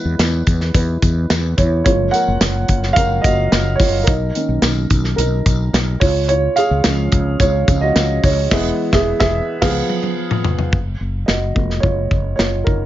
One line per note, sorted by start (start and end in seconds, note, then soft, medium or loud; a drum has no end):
0.00 0.44 E3 soft
0.00 0.44 G#3 soft
0.00 0.44 B3 medium
0.00 0.72 E4 medium
0.00 0.73 B4 medium
0.05 0.17 E2 medium
0.19 0.42 E2 loud
0.19 snare loud
0.19 closed hi-hat medium
0.19 tambourine medium
0.47 0.70 E2 loud
0.47 kick medium
0.47 closed hi-hat medium
0.47 tambourine soft
0.61 snare soft
0.74 0.97 E2 loud
0.74 1.27 E4 medium
0.74 1.26 B4 medium
0.74 kick medium
0.74 closed hi-hat medium
0.74 tambourine soft
1.02 1.25 E2 medium
1.02 kick medium
1.02 closed hi-hat medium
1.02 tambourine soft
1.30 1.53 E2 medium
1.30 snare loud
1.30 closed hi-hat medium
1.30 tambourine medium
1.57 1.81 E2 loud
1.57 1.84 E4 medium
1.57 1.83 C#5 medium
1.57 kick medium
1.57 closed hi-hat medium
1.57 tambourine soft
1.84 2.09 F#1 medium
1.84 2.23 F3 medium
1.84 2.23 G#3 soft
1.84 2.23 A#3 medium
1.84 2.12 F4 medium
1.84 2.14 C#5 medium
1.84 kick loud
1.84 closed hi-hat medium
2.11 2.93 A#4 medium
2.11 2.92 F#5 loud
2.11 closed hi-hat medium
2.11 tambourine soft
2.28 2.39 F#1 medium
2.41 2.64 F#1 loud
2.41 snare loud
2.41 closed hi-hat medium
2.41 tambourine medium
2.68 2.92 F#1 loud
2.68 kick medium
2.68 closed hi-hat medium
2.83 snare soft
2.93 3.19 F#1 medium
2.93 3.22 F3 soft
2.93 3.22 G#3 soft
2.93 3.22 A#3 soft
2.93 3.24 F5 loud
2.93 kick medium
2.93 closed hi-hat medium
2.97 3.23 A#4 medium
2.97 tambourine soft
3.21 3.47 F#1 loud
3.21 3.80 D#5 medium
3.21 kick medium
3.21 closed hi-hat medium
3.26 3.77 F#4 medium
3.26 tambourine soft
3.52 3.75 F#1 loud
3.52 snare medium
3.52 closed hi-hat medium
3.52 tambourine medium
3.76 4.06 C#5 medium
3.76 open hi-hat medium
3.80 4.03 F#1 loud
3.80 4.06 F4 medium
3.80 kick medium
3.80 tambourine soft
4.04 4.30 B1 loud
4.04 5.13 A#4 medium
4.04 kick loud
4.04 closed hi-hat medium
4.09 5.15 D#4 medium
4.09 tambourine soft
4.35 5.14 D#3 medium
4.35 5.15 A#3 soft
4.35 5.15 C#4 medium
4.35 closed hi-hat medium
4.35 tambourine soft
4.49 4.60 B1 medium
4.62 4.85 B1 loud
4.62 snare loud
4.62 closed hi-hat medium
4.62 tambourine medium
4.90 5.13 B1 loud
4.90 kick medium
4.90 closed hi-hat medium
4.90 tambourine soft
5.04 snare soft
5.16 5.41 B1 loud
5.16 5.70 D#4 medium
5.16 5.69 A#4 medium
5.16 closed hi-hat medium
5.16 tambourine soft
5.46 5.69 B1 medium
5.46 kick medium
5.46 closed hi-hat medium
5.46 tambourine soft
5.73 5.96 B1 loud
5.73 snare medium
5.73 closed hi-hat medium
5.73 tambourine medium
6.00 6.47 C#2 loud
6.00 6.28 F4 medium
6.00 6.27 C#5 medium
6.00 kick medium
6.00 open hi-hat medium
6.00 tambourine soft
6.29 6.37 F4 medium
6.29 6.35 C#5 loud
6.29 closed hi-hat medium
6.56 7.37 G#4 medium
6.56 7.42 F5 medium
6.56 closed hi-hat medium
6.56 tambourine soft
6.71 6.82 C#2 medium
6.84 7.08 C#2 medium
6.84 7.64 F3 soft
6.84 7.64 G#3 soft
6.84 7.64 C#4 medium
6.84 snare loud
6.84 closed hi-hat medium
6.84 tambourine medium
7.12 7.35 C#2 loud
7.12 kick medium
7.12 closed hi-hat medium
7.40 7.63 C#2 loud
7.40 7.80 F4 medium
7.40 7.83 C#5 medium
7.40 kick medium
7.40 closed hi-hat medium
7.40 tambourine soft
7.68 7.91 C#2 medium
7.68 7.93 F3 medium
7.68 7.93 G#3 soft
7.68 7.93 C#4 medium
7.68 kick medium
7.68 closed hi-hat medium
7.68 tambourine soft
7.81 8.21 F#4 medium
7.81 8.24 D#5 medium
7.96 8.19 C#2 loud
7.96 snare medium
7.96 closed hi-hat medium
7.96 tambourine medium
8.23 8.46 C#2 loud
8.23 8.50 F4 medium
8.23 8.52 C#5 medium
8.23 kick medium
8.23 open hi-hat medium
8.23 tambourine soft
8.51 8.70 E1 medium
8.51 8.70 E3 medium
8.51 8.71 G#3 medium
8.51 8.71 B3 loud
8.51 8.71 G#4 medium
8.51 8.70 E5 medium
8.51 kick loud
8.51 snare loud
8.51 crash medium
8.93 9.12 E1 medium
8.93 9.13 G#4 medium
8.93 9.12 E5 medium
8.93 kick medium
8.93 snare medium
9.20 9.39 E1 loud
9.20 9.40 G#4 loud
9.20 9.39 E5 loud
9.20 kick medium
9.20 snare loud
9.61 9.81 C#2 medium
9.61 9.81 F3 medium
9.61 9.81 B3 medium
9.61 9.81 G#4 loud
9.61 9.80 F5 medium
9.61 kick loud
9.61 snare loud
9.61 crash medium
9.89 high tom medium
10.03 high tom medium
10.31 mid tom medium
10.44 floor tom loud
10.59 floor tom medium
10.72 10.95 F#1 medium
10.72 kick medium
11.01 11.23 F#1 medium
11.26 11.51 F#1 medium
11.26 11.80 F#4 medium
11.26 11.84 D#5 medium
11.26 snare medium
11.54 11.79 F1 medium
11.54 12.86 F3 soft
11.54 12.86 G#3 soft
11.54 12.86 A#3 soft
11.54 kick medium
11.70 snare soft
11.80 12.06 F#1 medium
11.80 12.35 F4 medium
11.80 12.34 C#5 medium
11.80 kick medium
12.11 12.34 F#1 medium
12.11 kick medium
12.36 12.62 F#1 medium
12.36 12.65 F4 medium
12.36 12.66 C#5 medium
12.36 snare medium
12.64 12.86 F#1 medium
12.64 12.86 D#4 soft
12.64 12.86 A#4 medium
12.64 kick medium